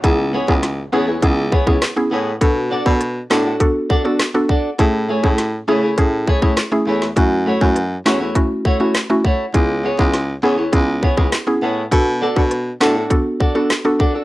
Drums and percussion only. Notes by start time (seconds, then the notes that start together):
0.04 kick, closed hi-hat
0.48 kick
0.63 cross-stick, snare, closed hi-hat
1.22 kick, closed hi-hat
1.52 kick
1.67 kick
1.82 cross-stick, snare, clap, closed hi-hat
2.41 kick, closed hi-hat
2.86 kick
3.01 cross-stick, closed hi-hat
3.31 snare, clap
3.60 kick, closed hi-hat
3.90 kick
4.20 cross-stick, snare, clap, closed hi-hat
4.49 kick
4.79 kick, closed hi-hat
5.24 kick
5.38 snare, closed hi-hat
5.98 kick, closed hi-hat
6.28 kick
6.42 kick
6.57 cross-stick, snare, clap, closed hi-hat
7.02 snare
7.17 kick, closed hi-hat
7.61 kick
7.76 cross-stick, closed hi-hat
8.06 snare, clap
8.35 kick, closed hi-hat
8.65 kick
8.95 cross-stick, snare, clap, closed hi-hat
9.24 kick
9.54 kick, closed hi-hat
9.99 kick
10.13 cross-stick, snare, closed hi-hat
10.73 kick, closed hi-hat
11.03 kick
11.18 kick
11.32 cross-stick, snare, clap, closed hi-hat
11.92 kick, closed hi-hat
12.36 kick
12.51 cross-stick, closed hi-hat
12.81 snare, clap
13.11 kick, closed hi-hat
13.40 kick
13.70 cross-stick, snare, clap, closed hi-hat
14.00 kick